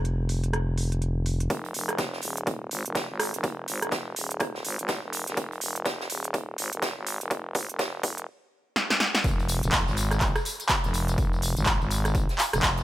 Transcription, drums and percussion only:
0.05 closed hi-hat
0.29 open hi-hat
0.44 closed hi-hat
0.53 cross-stick, closed hi-hat
0.78 open hi-hat
0.92 closed hi-hat
1.02 closed hi-hat
1.26 open hi-hat
1.40 closed hi-hat
1.50 kick, closed hi-hat
1.65 closed hi-hat
1.74 closed hi-hat, open hi-hat
1.89 cross-stick, closed hi-hat
1.98 kick, snare, closed hi-hat
2.13 snare
2.21 closed hi-hat, open hi-hat
2.37 closed hi-hat
2.47 kick, closed hi-hat
2.71 closed hi-hat, open hi-hat
2.86 closed hi-hat
2.95 kick, snare, closed hi-hat
3.19 cross-stick, closed hi-hat, open hi-hat
3.34 closed hi-hat
3.44 kick, closed hi-hat
3.68 closed hi-hat, open hi-hat
3.82 cross-stick, closed hi-hat
3.91 kick, snare, closed hi-hat
4.16 closed hi-hat, open hi-hat
4.31 closed hi-hat
4.40 kick, cross-stick, closed hi-hat
4.55 snare
4.65 closed hi-hat, open hi-hat
4.79 closed hi-hat
4.88 kick, snare, closed hi-hat
5.13 closed hi-hat, open hi-hat
5.27 snare, closed hi-hat
5.37 kick, closed hi-hat
5.52 closed hi-hat
5.61 closed hi-hat, open hi-hat
5.76 closed hi-hat
5.85 kick, snare, closed hi-hat
6.00 snare
6.10 closed hi-hat, open hi-hat
6.24 closed hi-hat
6.34 kick, closed hi-hat
6.58 closed hi-hat, open hi-hat
6.73 closed hi-hat
6.82 kick, snare, closed hi-hat
7.06 closed hi-hat, open hi-hat
7.21 closed hi-hat
7.30 kick, closed hi-hat
7.55 kick, closed hi-hat, open hi-hat
7.69 closed hi-hat
7.79 kick, snare, closed hi-hat
8.03 kick, closed hi-hat, open hi-hat
8.18 closed hi-hat
8.76 snare
8.90 snare
9.00 snare
9.15 snare
9.24 kick, closed hi-hat, tambourine
9.39 closed hi-hat, tambourine
9.49 closed hi-hat, open hi-hat, tambourine
9.63 closed hi-hat, tambourine
9.72 kick, snare, clap, closed hi-hat, tambourine
9.88 snare, tambourine
9.96 closed hi-hat, open hi-hat, tambourine
10.11 cross-stick, closed hi-hat, tambourine
10.21 kick, clap, closed hi-hat, tambourine
10.36 cross-stick, closed hi-hat, tambourine
10.45 closed hi-hat, open hi-hat, tambourine
10.60 closed hi-hat, tambourine
10.69 kick, snare, clap, closed hi-hat, tambourine
10.84 closed hi-hat, tambourine
10.94 closed hi-hat, open hi-hat, tambourine
11.08 closed hi-hat, tambourine
11.18 kick, closed hi-hat, tambourine
11.33 tambourine
11.42 closed hi-hat, open hi-hat, tambourine
11.57 closed hi-hat, tambourine
11.65 kick, snare, clap, closed hi-hat, tambourine
11.82 tambourine
11.91 closed hi-hat, open hi-hat, tambourine
12.05 cross-stick, closed hi-hat, tambourine
12.15 kick, closed hi-hat, tambourine
12.29 snare, closed hi-hat, tambourine
12.38 clap, closed hi-hat, open hi-hat, tambourine
12.53 cross-stick, closed hi-hat, tambourine
12.63 kick, snare, clap, closed hi-hat, tambourine
12.78 closed hi-hat, tambourine

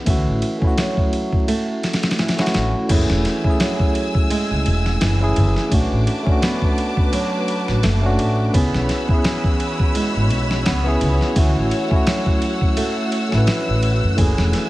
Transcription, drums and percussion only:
0.06 kick, ride
0.42 ride
0.62 kick
0.78 snare, ride
0.97 kick
1.13 ride
1.33 kick
1.48 ride
1.83 snare, ride
1.93 snare, ride
2.03 snare, ride
2.11 snare, ride
2.19 snare, ride
2.28 snare, ride
2.39 snare, ride
2.46 snare, ride
2.54 snare, ride
2.89 kick, crash, ride
3.10 snare
3.25 snare, ride
3.44 kick
3.60 snare, ride
3.80 kick
3.95 ride
4.15 kick
4.30 ride
4.66 ride
4.86 snare
5.01 snare, ride
5.36 ride
5.57 snare
5.72 kick, ride
6.07 ride
6.27 kick
6.42 snare, ride
6.62 kick
6.78 ride
6.97 kick
7.13 ride
7.48 ride
7.68 snare
7.83 snare, ride
8.19 ride
8.54 kick, ride
8.74 snare
8.89 snare, ride
9.09 kick
9.24 snare, ride
9.44 kick
9.60 ride
9.79 kick
9.95 ride
10.30 ride
10.51 snare
10.66 snare, ride
11.01 ride
11.21 snare
11.36 kick, ride
11.71 ride
11.91 kick
12.07 snare, ride
12.26 kick
12.42 ride
12.61 kick
12.77 ride
13.12 ride
13.32 snare
13.47 snare, ride
13.83 ride
14.18 kick, ride
14.38 snare
14.53 snare, ride

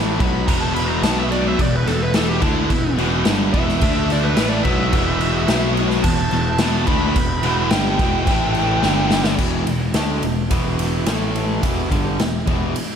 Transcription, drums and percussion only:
0.20 kick, crash
0.48 kick, crash
0.76 crash
1.03 snare, crash
1.32 crash
1.59 kick, crash
1.87 snare, crash
2.14 snare, crash
2.42 kick, crash
2.70 kick, crash
2.98 crash
3.25 snare, crash
3.54 kick, crash
3.69 snare
3.81 kick, crash
4.10 snare, crash
4.37 snare, crash
4.65 kick, crash
4.93 kick, crash
5.21 crash
5.48 snare, crash
5.77 crash
5.90 snare
6.04 kick, crash
6.31 crash
6.58 snare, crash
6.87 kick, crash
7.16 kick, crash
7.43 crash
7.71 snare, crash
7.99 kick, crash
8.27 kick, crash
8.55 crash
8.83 snare
9.11 snare
9.24 snare
9.38 kick, crash
9.67 ride
9.94 snare, ride
10.23 ride
10.51 kick, ride
10.79 ride
11.06 snare, ride
11.35 ride
11.63 kick, ride
11.91 kick, ride
12.19 snare, ride
12.47 kick, ride
12.76 ride

